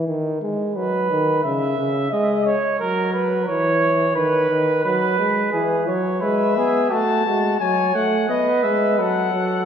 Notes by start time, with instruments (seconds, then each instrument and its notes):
0.07 trombone D#3
0.42 trombone G#3
0.74 trombone F#3, flugelhorn B4
1.10 trombone D#3
1.43 trombone C#3, flugelhorn E5
1.79 trombone C#3
2.11 trombone G#3, flugelhorn D#5
2.45 flugelhorn C#5
2.79 trombone F#3, flugelhorn A#4
3.13 flugelhorn B4
3.47 trombone E3, flugelhorn C#5
4.16 trombone D#3, flugelhorn B4
4.50 trombone D#3
4.84 trombone F#3, flugelhorn B4
5.19 trombone G#3
5.52 trombone E3, flugelhorn G#4
5.87 trombone F#3, flugelhorn C#5
6.21 trombone G#3, flugelhorn B4, trumpet E5
6.56 trombone B3, flugelhorn G#4
6.90 trombone A3, flugelhorn F#4, trumpet A5
7.26 trombone G#3, flugelhorn F#4
7.59 trombone F#3, flugelhorn C#5, trumpet G#5
7.95 trombone A3, trumpet F#5
8.29 trombone B3, flugelhorn B4, trumpet D#5
8.63 trombone G#3, trumpet E5
8.99 trombone F#3, flugelhorn A4, trumpet F#5
9.33 trombone F#3